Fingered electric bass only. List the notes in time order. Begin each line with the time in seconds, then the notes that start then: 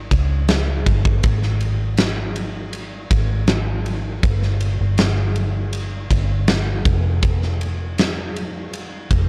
0.12 C#2
0.86 G1
1.24 G#1
3.11 G#1
4.24 G1
4.81 G1
6.11 G1
6.86 F1
9.11 F1